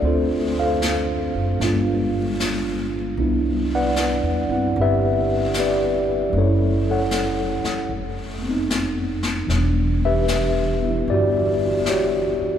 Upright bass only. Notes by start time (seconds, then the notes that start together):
0.02 D2
1.35 F#1
1.60 G1
3.17 C2
4.23 E2
4.49 G2
4.76 G1
6.33 F#1
7.64 muted upright bass stroke
7.89 F1
9.48 E1
11.08 G1
12.41 muted upright bass stroke